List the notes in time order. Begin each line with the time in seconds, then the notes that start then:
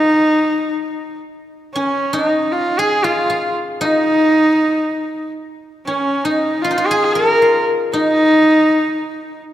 Already playing: C#4 D#4 F4 G#4 A#4
1.74 C#4
2.13 D#4
2.52 F4
2.79 G#4
3.04 F4
3.30 F4
3.81 D#4
5.86 C#4
6.24 D#4
6.62 F4
6.71 D#4
6.78 F4
6.87 G#4
7.12 A#4
7.42 F4
7.92 D#4